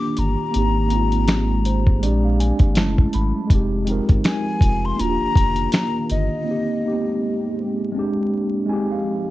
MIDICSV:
0, 0, Header, 1, 6, 480
1, 0, Start_track
1, 0, Tempo, 740741
1, 347, Time_signature, 4, 2, 24, 8
1, 6029, End_track
2, 0, Start_track
2, 0, Title_t, "Flute"
2, 0, Program_c, 0, 73
2, 0, Note_on_c, 0, 86, 99
2, 121, Note_on_c, 0, 82, 83
2, 131, Note_off_c, 0, 86, 0
2, 1554, Note_off_c, 0, 82, 0
2, 2763, Note_on_c, 0, 80, 92
2, 3145, Note_on_c, 0, 84, 94
2, 3155, Note_off_c, 0, 80, 0
2, 3244, Note_on_c, 0, 82, 103
2, 3253, Note_off_c, 0, 84, 0
2, 3716, Note_off_c, 0, 82, 0
2, 3721, Note_on_c, 0, 82, 102
2, 3938, Note_off_c, 0, 82, 0
2, 3961, Note_on_c, 0, 75, 84
2, 4888, Note_off_c, 0, 75, 0
2, 6029, End_track
3, 0, Start_track
3, 0, Title_t, "Tine electric piano"
3, 0, Program_c, 1, 4
3, 0, Control_c, 1, 64, 127
3, 0, Note_on_c, 1, 58, 70
3, 0, Note_on_c, 1, 62, 69
3, 0, Note_on_c, 1, 65, 68
3, 0, Note_on_c, 1, 67, 78
3, 156, Note_off_c, 1, 58, 0
3, 164, Note_off_c, 1, 62, 0
3, 172, Note_off_c, 1, 65, 0
3, 179, Note_off_c, 1, 67, 0
3, 331, Note_on_c, 1, 58, 77
3, 348, Note_on_c, 1, 60, 68
3, 356, Control_c, 1, 64, 0
3, 363, Note_on_c, 1, 63, 66
3, 378, Note_on_c, 1, 67, 78
3, 470, Control_c, 1, 64, 127
3, 540, Note_off_c, 1, 58, 0
3, 548, Note_off_c, 1, 60, 0
3, 555, Note_off_c, 1, 63, 0
3, 563, Note_off_c, 1, 67, 0
3, 572, Note_on_c, 1, 58, 72
3, 589, Note_on_c, 1, 60, 64
3, 603, Note_on_c, 1, 63, 63
3, 619, Note_on_c, 1, 65, 79
3, 1076, Note_on_c, 1, 72, 67
3, 1293, Note_on_c, 1, 56, 81
3, 1295, Note_off_c, 1, 72, 0
3, 1300, Note_off_c, 1, 58, 0
3, 1300, Note_off_c, 1, 60, 0
3, 1308, Note_on_c, 1, 60, 79
3, 1315, Note_off_c, 1, 63, 0
3, 1315, Note_on_c, 1, 74, 75
3, 1316, Control_c, 1, 64, 0
3, 1323, Note_off_c, 1, 65, 0
3, 1323, Note_on_c, 1, 62, 80
3, 1337, Note_on_c, 1, 67, 97
3, 1410, Control_c, 1, 64, 127
3, 1443, Note_off_c, 1, 74, 0
3, 1456, Note_on_c, 1, 77, 63
3, 1544, Note_off_c, 1, 77, 0
3, 1555, Note_on_c, 1, 80, 74
3, 1702, Note_off_c, 1, 56, 0
3, 1709, Note_off_c, 1, 60, 0
3, 1716, Note_off_c, 1, 62, 0
3, 1723, Note_off_c, 1, 67, 0
3, 1773, Note_on_c, 1, 57, 90
3, 1774, Note_off_c, 1, 80, 0
3, 1788, Note_on_c, 1, 61, 81
3, 1795, Note_on_c, 1, 81, 70
3, 1796, Control_c, 1, 64, 0
3, 1803, Note_on_c, 1, 64, 83
3, 1818, Note_on_c, 1, 56, 99
3, 1895, Control_c, 1, 64, 127
3, 2015, Note_off_c, 1, 81, 0
3, 2037, Note_on_c, 1, 83, 72
3, 2181, Note_off_c, 1, 57, 0
3, 2189, Note_off_c, 1, 61, 0
3, 2197, Note_off_c, 1, 64, 0
3, 2204, Note_off_c, 1, 56, 0
3, 2251, Note_on_c, 1, 56, 84
3, 2256, Note_off_c, 1, 83, 0
3, 2267, Note_on_c, 1, 60, 78
3, 2275, Control_c, 1, 64, 0
3, 2282, Note_on_c, 1, 63, 74
3, 2297, Note_on_c, 1, 67, 95
3, 2372, Control_c, 1, 64, 127
3, 2459, Note_off_c, 1, 56, 0
3, 2467, Note_off_c, 1, 60, 0
3, 2475, Note_off_c, 1, 63, 0
3, 2483, Note_off_c, 1, 67, 0
3, 2492, Note_on_c, 1, 56, 87
3, 2506, Note_on_c, 1, 60, 79
3, 2521, Note_on_c, 1, 63, 82
3, 2537, Note_on_c, 1, 70, 90
3, 3214, Note_on_c, 1, 58, 73
3, 3220, Note_off_c, 1, 56, 0
3, 3227, Note_off_c, 1, 60, 0
3, 3230, Note_on_c, 1, 62, 71
3, 3234, Note_off_c, 1, 63, 0
3, 3235, Control_c, 1, 64, 0
3, 3242, Note_off_c, 1, 70, 0
3, 3244, Note_on_c, 1, 65, 65
3, 3259, Note_on_c, 1, 66, 69
3, 3293, Note_off_c, 1, 66, 0
3, 3301, Note_on_c, 1, 67, 79
3, 3354, Control_c, 1, 64, 127
3, 3997, Note_off_c, 1, 58, 0
3, 4005, Note_off_c, 1, 62, 0
3, 4013, Note_off_c, 1, 65, 0
3, 4041, Note_off_c, 1, 67, 0
3, 4172, Note_on_c, 1, 58, 76
3, 4188, Note_on_c, 1, 60, 65
3, 4195, Control_c, 1, 64, 0
3, 4203, Note_on_c, 1, 63, 65
3, 4219, Note_on_c, 1, 67, 80
3, 4326, Control_c, 1, 64, 127
3, 4380, Note_off_c, 1, 58, 0
3, 4388, Note_off_c, 1, 60, 0
3, 4396, Note_off_c, 1, 63, 0
3, 4403, Note_off_c, 1, 67, 0
3, 4414, Note_on_c, 1, 58, 65
3, 4429, Note_on_c, 1, 59, 53
3, 4443, Note_on_c, 1, 63, 60
3, 4458, Note_on_c, 1, 67, 79
3, 4471, Note_on_c, 1, 60, 65
3, 4478, Note_off_c, 1, 59, 0
3, 5133, Note_on_c, 1, 56, 91
3, 5140, Note_off_c, 1, 60, 0
3, 5141, Note_off_c, 1, 58, 0
3, 5148, Note_on_c, 1, 60, 74
3, 5155, Note_off_c, 1, 63, 0
3, 5156, Control_c, 1, 64, 0
3, 5163, Note_off_c, 1, 67, 0
3, 5163, Note_on_c, 1, 62, 78
3, 5178, Note_on_c, 1, 67, 98
3, 5273, Control_c, 1, 64, 127
3, 5541, Note_off_c, 1, 56, 0
3, 5549, Note_off_c, 1, 60, 0
3, 5557, Note_off_c, 1, 62, 0
3, 5564, Note_off_c, 1, 67, 0
3, 5611, Note_on_c, 1, 56, 86
3, 5627, Note_on_c, 1, 60, 79
3, 5634, Note_on_c, 1, 80, 74
3, 5636, Control_c, 1, 64, 0
3, 5641, Note_on_c, 1, 63, 83
3, 5657, Note_on_c, 1, 67, 98
3, 5763, Note_off_c, 1, 80, 0
3, 5765, Control_c, 1, 64, 127
3, 5776, Note_on_c, 1, 77, 67
3, 6021, Note_off_c, 1, 56, 0
3, 6029, Note_off_c, 1, 60, 0
3, 6029, Note_off_c, 1, 63, 0
3, 6029, Note_off_c, 1, 67, 0
3, 6029, Note_off_c, 1, 77, 0
3, 6029, End_track
4, 0, Start_track
4, 0, Title_t, "Analog synth pad"
4, 0, Program_c, 2, 89
4, 0, Note_on_c, 2, 51, 75
4, 0, Note_on_c, 2, 58, 72
4, 0, Note_on_c, 2, 62, 74
4, 0, Note_on_c, 2, 67, 88
4, 338, Note_off_c, 2, 51, 0
4, 339, Note_off_c, 2, 58, 0
4, 340, Note_off_c, 2, 62, 0
4, 348, Note_on_c, 2, 56, 74
4, 348, Note_on_c, 2, 60, 67
4, 1289, Note_off_c, 2, 67, 0
4, 1298, Note_off_c, 2, 60, 0
4, 1308, Note_on_c, 2, 58, 63
4, 1308, Note_on_c, 2, 62, 85
4, 1774, Note_off_c, 2, 56, 0
4, 1783, Note_off_c, 2, 58, 0
4, 1783, Note_off_c, 2, 62, 0
4, 1785, Note_on_c, 2, 54, 73
4, 1786, Note_on_c, 2, 81, 81
4, 1788, Note_on_c, 2, 64, 59
4, 2262, Note_off_c, 2, 54, 0
4, 2262, Note_off_c, 2, 81, 0
4, 2263, Note_off_c, 2, 64, 0
4, 2266, Note_on_c, 2, 63, 63
4, 2266, Note_on_c, 2, 65, 67
4, 2268, Note_on_c, 2, 53, 73
4, 3217, Note_off_c, 2, 63, 0
4, 3218, Note_off_c, 2, 53, 0
4, 3228, Note_on_c, 2, 50, 70
4, 3228, Note_on_c, 2, 58, 69
4, 3229, Note_on_c, 2, 51, 77
4, 4167, Note_off_c, 2, 65, 0
4, 4178, Note_off_c, 2, 50, 0
4, 4178, Note_off_c, 2, 58, 0
4, 4179, Note_off_c, 2, 51, 0
4, 4185, Note_on_c, 2, 60, 62
4, 4186, Note_on_c, 2, 67, 80
4, 4189, Note_on_c, 2, 56, 72
4, 5137, Note_off_c, 2, 60, 0
4, 5137, Note_off_c, 2, 67, 0
4, 5144, Note_on_c, 2, 58, 67
4, 5147, Note_on_c, 2, 62, 82
4, 5614, Note_off_c, 2, 56, 0
4, 5620, Note_on_c, 2, 56, 76
4, 5621, Note_off_c, 2, 58, 0
4, 5622, Note_off_c, 2, 62, 0
4, 5622, Note_on_c, 2, 53, 70
4, 5622, Note_on_c, 2, 63, 64
4, 5622, Note_on_c, 2, 67, 64
4, 6029, Note_off_c, 2, 53, 0
4, 6029, Note_off_c, 2, 56, 0
4, 6029, Note_off_c, 2, 63, 0
4, 6029, Note_off_c, 2, 67, 0
4, 6029, End_track
5, 0, Start_track
5, 0, Title_t, "Sub bass"
5, 0, Program_c, 3, 38
5, 115, Note_on_c, 3, 31, 86
5, 230, Note_off_c, 3, 31, 0
5, 356, Note_on_c, 3, 32, 102
5, 1316, Note_on_c, 3, 34, 97
5, 1326, Note_off_c, 3, 32, 0
5, 1632, Note_off_c, 3, 34, 0
5, 1687, Note_on_c, 3, 32, 84
5, 1796, Note_on_c, 3, 30, 95
5, 1806, Note_off_c, 3, 32, 0
5, 1994, Note_off_c, 3, 30, 0
5, 2038, Note_on_c, 3, 32, 82
5, 2152, Note_off_c, 3, 32, 0
5, 2273, Note_on_c, 3, 29, 92
5, 2590, Note_off_c, 3, 29, 0
5, 2656, Note_on_c, 3, 31, 85
5, 2736, Note_off_c, 3, 31, 0
5, 2991, Note_on_c, 3, 29, 92
5, 3190, Note_off_c, 3, 29, 0
5, 3237, Note_on_c, 3, 27, 102
5, 3351, Note_off_c, 3, 27, 0
5, 3381, Note_on_c, 3, 29, 47
5, 3417, Note_off_c, 3, 29, 0
5, 3474, Note_on_c, 3, 29, 80
5, 3672, Note_off_c, 3, 29, 0
5, 3957, Note_on_c, 3, 31, 91
5, 4071, Note_off_c, 3, 31, 0
5, 6029, End_track
6, 0, Start_track
6, 0, Title_t, "Drums"
6, 108, Note_on_c, 9, 42, 55
6, 173, Note_off_c, 9, 42, 0
6, 350, Note_on_c, 9, 42, 72
6, 415, Note_off_c, 9, 42, 0
6, 585, Note_on_c, 9, 42, 54
6, 650, Note_off_c, 9, 42, 0
6, 726, Note_on_c, 9, 42, 36
6, 790, Note_off_c, 9, 42, 0
6, 827, Note_on_c, 9, 42, 73
6, 832, Note_on_c, 9, 38, 107
6, 836, Note_on_c, 9, 26, 85
6, 892, Note_off_c, 9, 42, 0
6, 897, Note_off_c, 9, 38, 0
6, 901, Note_off_c, 9, 26, 0
6, 1070, Note_on_c, 9, 42, 67
6, 1135, Note_off_c, 9, 42, 0
6, 1209, Note_on_c, 9, 36, 87
6, 1274, Note_off_c, 9, 36, 0
6, 1314, Note_on_c, 9, 42, 76
6, 1379, Note_off_c, 9, 42, 0
6, 1557, Note_on_c, 9, 42, 72
6, 1622, Note_off_c, 9, 42, 0
6, 1679, Note_on_c, 9, 42, 32
6, 1683, Note_on_c, 9, 36, 82
6, 1744, Note_off_c, 9, 42, 0
6, 1748, Note_off_c, 9, 36, 0
6, 1784, Note_on_c, 9, 42, 84
6, 1795, Note_on_c, 9, 38, 120
6, 1799, Note_on_c, 9, 26, 98
6, 1849, Note_off_c, 9, 42, 0
6, 1860, Note_off_c, 9, 38, 0
6, 1863, Note_off_c, 9, 26, 0
6, 1933, Note_on_c, 9, 36, 79
6, 1998, Note_off_c, 9, 36, 0
6, 2029, Note_on_c, 9, 42, 56
6, 2093, Note_off_c, 9, 42, 0
6, 2268, Note_on_c, 9, 36, 92
6, 2270, Note_on_c, 9, 42, 70
6, 2333, Note_off_c, 9, 36, 0
6, 2335, Note_off_c, 9, 42, 0
6, 2507, Note_on_c, 9, 42, 56
6, 2572, Note_off_c, 9, 42, 0
6, 2649, Note_on_c, 9, 42, 32
6, 2652, Note_on_c, 9, 36, 93
6, 2713, Note_off_c, 9, 42, 0
6, 2717, Note_off_c, 9, 36, 0
6, 2749, Note_on_c, 9, 42, 68
6, 2754, Note_on_c, 9, 38, 103
6, 2758, Note_on_c, 9, 26, 87
6, 2814, Note_off_c, 9, 42, 0
6, 2819, Note_off_c, 9, 38, 0
6, 2823, Note_off_c, 9, 26, 0
6, 2986, Note_on_c, 9, 36, 92
6, 2993, Note_on_c, 9, 42, 65
6, 3051, Note_off_c, 9, 36, 0
6, 3058, Note_off_c, 9, 42, 0
6, 3237, Note_on_c, 9, 42, 72
6, 3301, Note_off_c, 9, 42, 0
6, 3470, Note_on_c, 9, 36, 94
6, 3479, Note_on_c, 9, 42, 71
6, 3535, Note_off_c, 9, 36, 0
6, 3544, Note_off_c, 9, 42, 0
6, 3602, Note_on_c, 9, 42, 35
6, 3667, Note_off_c, 9, 42, 0
6, 3707, Note_on_c, 9, 42, 83
6, 3717, Note_on_c, 9, 38, 119
6, 3721, Note_on_c, 9, 26, 102
6, 3771, Note_off_c, 9, 42, 0
6, 3782, Note_off_c, 9, 38, 0
6, 3786, Note_off_c, 9, 26, 0
6, 3950, Note_on_c, 9, 42, 59
6, 4015, Note_off_c, 9, 42, 0
6, 6029, End_track
0, 0, End_of_file